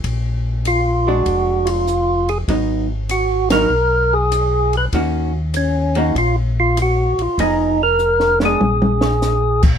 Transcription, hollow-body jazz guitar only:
X:1
M:4/4
L:1/8
Q:"Swing" 1/4=98
K:Ebm
V:1 name="Hollow-body jazz guitar"
z3 [A,=D]3 z2 | [G,CE] z2 [G,CE] z4 | [E,B,DG] z2 [E,B,DG] z4 | [F,CEA] z2 [A,C=D] z4 |]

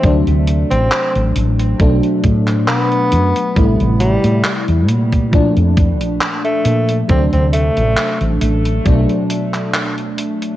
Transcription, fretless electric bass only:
X:1
M:4/4
L:1/16
Q:"Swing 16ths" 1/4=68
K:Dmix
V:1 name="Fretless electric bass" clef=bass
D,, D,,2 A,,, z A,,, A,,,2 B,,, z A,,2 B,,2 F,, z | A,,, A,,,2 A,, z E,, _B,,3 =F,,2 _B,,, z2 B,,2 | D,, D,,2 A,,, z A,,, A,,,2 B,,, z6 z |]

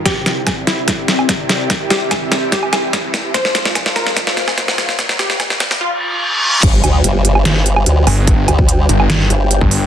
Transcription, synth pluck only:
X:1
M:4/4
L:1/8
Q:1/4=146
K:Gphr
V:1 name="Synth pluck"
G3 =E3 z2 | z G3 G4 | c3 B3 z2 | z G3 F4 |
z8 | z8 |]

